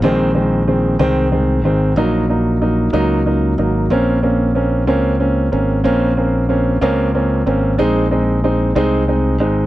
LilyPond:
<<
  \new Staff \with { instrumentName = "Grand piano" } { \time 6/8 \key bes \minor \tempo 4. = 62 <ees aes c'>8 <ees aes c'>8 <ees aes c'>8 <ees aes c'>8 <ees aes c'>8 <ees aes c'>8 | <ges bes ees'>8 <ges bes ees'>8 <ges bes ees'>8 <ges bes ees'>8 <ges bes ees'>8 <ges bes ees'>8 | <bes c' des'>8 <bes c' des'>8 <bes c' des'>8 <bes c' des'>8 <bes c' des'>8 <bes c' des'>8 | <bes c' des'>8 <bes c' des'>8 <bes c' des'>8 <bes c' des'>8 <bes c' des'>8 <bes c' des'>8 |
<aes c' ees'>8 <aes c' ees'>8 <aes c' ees'>8 <aes c' ees'>8 <aes c' ees'>8 <aes c' ees'>8 | }
  \new Staff \with { instrumentName = "Fingered electric bass" } { \clef bass \time 6/8 \key bes \minor bes,,4. c,4 aes,,8 | bes,,4. des,4 aes,,8 | bes,,4. des,4 aes,,8 | bes,,4. des,4 aes,,8 |
bes,,4. c,4 aes,,8 | }
>>